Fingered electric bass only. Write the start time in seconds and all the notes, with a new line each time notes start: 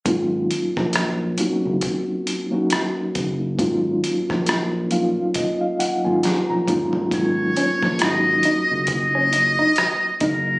0.06 G#1
0.78 A#1
1.40 muted fingered electric bass stroke
1.65 F#1
3.16 F#1
3.60 G#1
4.31 A#1
5.81 muted fingered electric bass stroke
6.06 G#1
6.25 muted fingered electric bass stroke
6.50 A#1
6.69 G#1
7.12 G#1
7.83 A#1
8.01 G#1
8.71 F#1
10.22 F#1